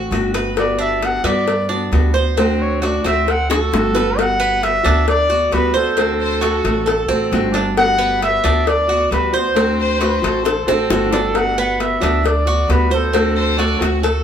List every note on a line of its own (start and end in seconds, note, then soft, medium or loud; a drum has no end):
0.00 0.10 A3 soft
0.00 0.11 C4 soft
0.00 0.11 F#4 soft
0.00 0.33 F#4 medium
0.11 1.18 G1 loud
0.11 0.33 D3 medium
0.11 0.33 A3 medium
0.11 0.34 C4 medium
0.11 0.33 F#4 medium
0.11 cowbell medium
0.34 0.56 A3 soft
0.34 0.56 C4 soft
0.34 0.56 F#4 soft
0.34 0.78 B4 medium
0.34 cowbell medium
0.56 1.00 G3 medium
0.56 1.01 B3 medium
0.56 1.02 F#4 medium
0.56 0.79 D5 medium
0.56 cowbell loud
0.79 1.23 D4 medium
0.79 1.07 E5 medium
1.01 1.23 G3 soft
1.01 1.24 B3 medium
1.01 1.23 F#4 medium
1.01 cowbell medium
1.06 1.27 F#5 loud
1.24 1.88 G2 medium
1.24 1.68 B3 medium
1.24 1.47 B3 medium
1.24 1.46 F#4 medium
1.24 1.70 D5 loud
1.24 cowbell medium
1.47 muted nylon-string guitar stroke medium
1.47 cowbell medium
1.69 1.92 B3 soft
1.69 2.13 D4 medium
1.69 1.91 F#4 medium
1.92 2.98 D2 loud
1.92 2.14 G3 medium
1.92 2.14 B3 medium
1.92 2.14 F#4 medium
1.92 cowbell medium
2.14 2.38 B3 soft
2.14 2.36 F#4 soft
2.14 2.36 C5 medium
2.37 2.81 D3 medium
2.37 2.82 A3 medium
2.37 2.81 C4 medium
2.37 2.82 C4 medium
2.37 2.83 F#4 medium
2.37 2.60 C5 medium
2.37 cowbell loud
2.62 2.87 C#5 medium
2.82 3.04 D3 medium
2.82 3.04 A3 medium
2.82 3.05 C4 medium
2.82 3.04 F#4 medium
2.82 3.03 F#4 medium
2.82 3.07 D5 medium
2.82 cowbell medium
3.04 3.68 D2 loud
3.04 3.26 A3 medium
3.04 3.48 C4 medium
3.04 3.26 C4 medium
3.04 3.26 F#4 medium
3.04 3.32 E5 loud
3.04 cowbell medium
3.27 3.51 F#5 loud
3.27 muted nylon-string guitar stroke medium
3.27 cowbell loud
3.49 3.72 A3 soft
3.49 3.72 C4 soft
3.49 3.71 F#4 medium
3.49 3.94 F#4 medium
3.49 4.22 A4 loud
3.49 high bongo loud
3.72 4.79 G1 loud
3.72 3.94 D3 medium
3.72 3.94 A3 medium
3.72 3.94 C4 medium
3.72 3.92 F#4 loud
3.72 cowbell medium
3.72 high bongo medium
3.94 4.16 A3 soft
3.94 4.17 C4 soft
3.94 4.16 F#4 medium
3.94 4.17 B4 medium
3.94 cowbell medium
3.94 low bongo medium
4.17 4.60 G3 medium
4.17 4.62 B3 medium
4.17 4.62 F#4 medium
4.17 4.65 F#5 loud
4.17 cowbell loud
4.40 4.83 B3 medium
4.61 4.83 G3 medium
4.61 4.84 B3 soft
4.61 4.82 F#4 medium
4.61 5.08 E5 loud
4.61 cowbell medium
4.83 5.48 D2 loud
4.83 5.06 B3 medium
4.83 5.28 D4 medium
4.83 5.06 F#4 medium
4.83 cowbell medium
5.07 5.55 D5 loud
5.07 muted nylon-string guitar stroke medium
5.07 cowbell loud
5.29 5.51 B3 soft
5.29 5.51 F#4 medium
5.29 5.73 F#4 medium
5.51 6.58 D2 medium
5.51 5.74 G3 medium
5.51 5.74 B3 medium
5.51 5.74 F#4 medium
5.51 5.76 B4 loud
5.51 cowbell medium
5.74 5.98 B3 soft
5.74 5.96 F#4 medium
5.74 7.07 A4 medium
5.74 5.96 C5 medium
5.97 6.40 D3 medium
5.97 6.41 A3 medium
5.97 6.41 C4 medium
5.97 6.42 C4 medium
5.97 6.42 F#4 medium
5.97 cowbell loud
6.20 6.41 C5 loud
6.41 6.63 D3 medium
6.41 6.64 A3 medium
6.41 6.64 C4 medium
6.41 6.85 F#4 medium
6.41 6.63 F#4 medium
6.41 6.54 A4 medium
6.41 cowbell medium
6.53 6.98 F#4 medium
6.64 7.06 A1 loud
6.64 6.86 A3 medium
6.64 6.87 C4 medium
6.64 6.86 F#4 medium
6.64 cowbell medium
6.86 7.08 A4 medium
6.86 muted nylon-string guitar stroke medium
6.86 cowbell loud
7.09 7.30 A1 medium
7.09 7.31 A3 soft
7.09 7.53 C4 medium
7.09 7.31 C4 soft
7.09 7.31 F#4 soft
7.09 7.48 A4 medium
7.31 8.38 G1 loud
7.31 7.53 D3 medium
7.31 7.54 A3 medium
7.31 7.54 C4 medium
7.31 7.52 F#4 medium
7.31 cowbell medium
7.54 7.76 A3 soft
7.54 7.76 C4 soft
7.54 7.98 D4 medium
7.54 7.76 F#4 medium
7.54 cowbell medium
7.77 8.20 G3 medium
7.77 8.21 B3 medium
7.77 8.22 F#4 medium
7.77 8.19 F#5 loud
7.77 cowbell loud
7.98 8.42 B3 loud
8.21 8.43 G3 medium
8.21 8.44 B3 medium
8.21 8.43 F#4 medium
8.21 8.69 E5 loud
8.21 cowbell medium
8.44 9.07 D2 loud
8.44 8.66 B3 medium
8.44 8.87 D4 medium
8.44 8.66 F#4 medium
8.44 cowbell medium
8.66 9.12 D5 loud
8.66 muted nylon-string guitar stroke medium
8.66 cowbell medium
8.87 9.11 B3 soft
8.87 9.10 F#4 soft
8.87 9.32 F#4 medium
9.11 10.17 D2 medium
9.11 9.33 G3 medium
9.11 9.33 B3 medium
9.11 9.32 F#4 medium
9.11 9.37 B4 loud
9.11 cowbell medium
9.33 9.56 B3 soft
9.33 9.55 F#4 medium
9.33 9.55 C5 medium
9.33 10.69 C5 loud
9.54 9.99 D3 medium
9.54 9.99 A3 medium
9.54 10.00 C4 medium
9.54 10.00 F#4 medium
9.54 cowbell loud
9.80 10.00 C5 loud
10.00 10.22 D3 medium
10.00 10.22 A3 medium
10.00 10.22 C4 medium
10.00 10.44 F#4 medium
10.00 10.21 F#4 medium
10.00 10.24 B4 loud
10.00 cowbell medium
10.22 10.65 A1 loud
10.22 10.44 A3 medium
10.22 10.44 C4 medium
10.22 10.44 F#4 medium
10.22 10.58 A4 loud
10.22 cowbell medium
10.44 10.67 A4 medium
10.44 muted nylon-string guitar stroke medium
10.44 cowbell loud
10.44 high bongo medium
10.67 10.89 A1 medium
10.67 10.90 A3 soft
10.67 11.12 C4 medium
10.67 10.90 C4 soft
10.67 10.89 F#4 medium
10.67 11.39 A4 medium
10.67 high bongo medium
10.90 11.96 G1 medium
10.90 11.12 D3 medium
10.90 11.12 A3 medium
10.90 11.12 C4 medium
10.90 11.11 F#4 loud
10.90 cowbell medium
10.90 low bongo loud
11.12 11.33 A3 soft
11.12 11.35 C4 soft
11.12 11.57 D4 medium
11.12 11.34 F#4 medium
11.12 cowbell medium
11.12 low bongo loud
11.34 11.78 G3 medium
11.34 11.79 B3 medium
11.34 11.80 F#4 medium
11.34 11.59 F#5 loud
11.34 cowbell loud
11.58 12.01 B3 medium
11.58 11.83 F#5 loud
11.79 12.01 G3 medium
11.79 12.02 B3 medium
11.79 11.99 F#4 medium
11.79 12.28 E5 medium
11.79 cowbell medium
12.00 12.65 D2 loud
12.00 12.23 B3 medium
12.00 12.45 D4 medium
12.00 12.23 F#4 medium
12.00 cowbell medium
12.23 12.73 D5 loud
12.23 muted nylon-string guitar stroke medium
12.23 cowbell loud
12.46 12.68 B3 soft
12.46 12.68 F#4 soft
12.46 12.91 F#4 medium
12.68 13.75 D2 loud
12.68 12.90 G3 medium
12.68 12.91 B3 medium
12.68 12.89 F#4 medium
12.68 12.93 B4 loud
12.68 cowbell medium
12.90 13.14 B3 soft
12.90 13.12 F#4 medium
12.90 13.96 A4 medium
12.90 13.13 C5 medium
13.13 13.57 D3 medium
13.13 13.58 A3 medium
13.13 13.57 C4 medium
13.13 13.58 C4 medium
13.13 13.58 F#4 medium
13.13 cowbell loud
13.37 13.58 C5 loud
13.58 13.80 D3 medium
13.58 13.80 A3 medium
13.58 13.81 C4 medium
13.58 14.02 F#4 medium
13.58 13.79 F#4 medium
13.58 13.82 D5 loud
13.58 cowbell medium
13.81 14.23 D2 medium
13.81 14.03 A3 medium
13.81 14.03 C4 medium
13.81 14.02 F#4 medium
13.81 14.15 F#4 medium
13.81 cowbell medium
14.03 14.24 A4 medium
14.03 muted nylon-string guitar stroke medium
14.03 cowbell loud